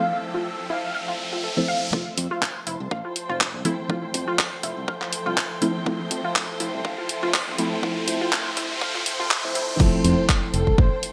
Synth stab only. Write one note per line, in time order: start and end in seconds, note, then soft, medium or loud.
0.00 1.54 F3 medium
0.00 1.54 A3 medium
0.00 1.55 C4 medium
0.00 1.55 E4 medium
0.00 1.55 A4 loud
1.57 1.90 F3 medium
1.57 1.90 A3 medium
1.57 1.90 C4 medium
1.57 1.90 E4 medium
1.57 1.91 C5 loud
1.92 3.62 F3 medium
1.92 3.62 A3 medium
1.92 3.62 C4 medium
1.92 3.63 E4 medium
1.92 3.63 A4 loud
3.65 3.87 F3 medium
3.65 3.87 A3 medium
3.65 3.87 C4 medium
3.65 3.87 E4 medium
3.65 3.87 A4 loud
3.89 5.59 F3 medium
3.89 5.59 A3 medium
3.89 5.59 C4 medium
3.89 5.59 E4 medium
3.89 5.60 A4 loud
5.61 5.83 F3 medium
5.61 5.84 A3 medium
5.61 5.84 C4 medium
5.61 5.84 E4 medium
5.61 5.84 A4 loud
5.85 7.55 F3 medium
5.85 7.56 A3 medium
5.85 7.56 C4 medium
5.85 7.56 E4 medium
5.85 7.56 A4 loud
7.58 7.80 F3 medium
7.58 7.80 A3 medium
7.58 7.80 C4 medium
7.58 7.81 E4 medium
7.58 7.81 A4 loud
7.82 9.41 F3 medium
7.82 9.41 A3 medium
7.82 9.41 C4 medium
7.82 9.42 E4 medium
7.82 9.42 A4 loud
9.44 9.77 F3 medium
9.44 9.77 A3 medium
9.44 9.77 C4 medium
9.44 9.77 E4 medium
9.44 9.77 C5 loud
9.79 11.13 F3 medium
9.79 11.13 A3 medium
9.79 11.13 C4 medium
9.79 11.13 E4 medium
9.79 11.13 A4 loud